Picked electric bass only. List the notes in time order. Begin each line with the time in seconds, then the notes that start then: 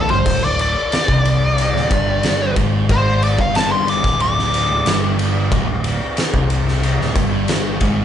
0.10 G1
0.26 D1
0.43 D1
1.08 C2
1.74 D1
1.91 G1
2.56 G#1
3.39 G1
4.04 D1
4.70 D1
4.87 G1
5.52 D1
5.68 D1
6.34 C2
7.00 D1
7.16 G1
7.81 G#1